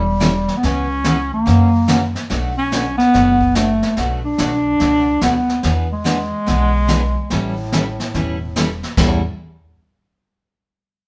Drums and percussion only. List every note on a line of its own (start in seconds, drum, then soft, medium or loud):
0.21 snare medium
0.21 hi-hat pedal medium
0.48 snare soft
0.63 brush sweep soft
0.63 snare soft
1.04 snare medium
1.04 hi-hat pedal medium
1.46 brush sweep soft
1.46 snare soft
1.88 snare medium
1.88 hi-hat pedal medium
2.15 snare soft
2.30 brush sweep soft
2.30 snare soft
2.72 snare medium
2.72 hi-hat pedal medium
2.99 snare soft
3.14 brush sweep soft
3.14 snare soft
3.41 kick medium
3.55 snare medium
3.55 hi-hat pedal medium
3.82 snare soft
3.97 brush sweep soft
3.97 snare soft
4.38 snare medium
4.38 hi-hat pedal medium
4.80 brush sweep soft
4.80 snare soft
5.21 snare medium
5.21 hi-hat pedal medium
5.49 snare soft
5.63 brush sweep soft
5.63 snare soft
6.06 snare medium
6.06 hi-hat pedal medium
6.47 brush sweep soft
6.47 snare soft
6.88 snare medium
6.88 hi-hat pedal medium
7.30 brush sweep medium
7.30 snare soft
7.72 snare medium
7.72 hi-hat pedal medium
8.00 snare soft
8.14 brush sweep soft
8.14 snare soft
8.56 snare medium
8.56 hi-hat pedal medium
8.83 snare soft
8.97 kick loud
8.97 snare medium
8.97 china medium